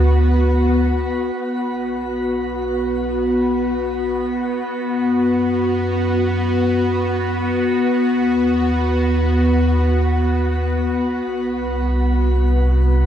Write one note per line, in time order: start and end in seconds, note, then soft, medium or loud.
0.00 1.31 D2 medium
0.00 1.34 B3 medium
0.00 1.35 F#4 medium
1.35 4.63 B1 medium
1.35 13.06 B3 medium
1.35 13.06 F#4 medium
4.67 7.91 F#2 medium
7.95 11.21 D#2 medium
11.26 13.06 C2 medium